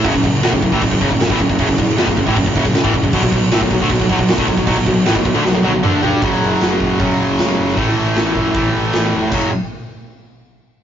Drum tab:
CC |x-x-x-x-x-x-x-x-|x-x-x-x-x-x-x-x-|x-x-x-x-x-x-x-x-|x-x-x-x---------|
HH |----------------|----------------|----------------|----------------|
SD |----o-------o---|-o--o-------o---|-o--o-------o---|-o--o---o-------|
T1 |----------------|----------------|----------------|----------o-----|
T2 |----------------|----------------|----------------|------------o---|
FT |----------------|----------------|----------------|--------------o-|
BD |ooo--ooooooo-ooo|ooo--ooooooo-ooo|ooo--ooooooo-ooo|ooo--oo---------|

CC |----------------|----------------|x---------------|
HH |o---o---o---o---|o---o---o---o---|----------------|
SD |--o-o-------o--o|----o-------o---|----------------|
T1 |----------------|----------------|----------------|
T2 |----------------|----------------|----------------|
FT |----------------|----------------|----------------|
BD |o-----o-o-------|o-----o-o-------|o---------------|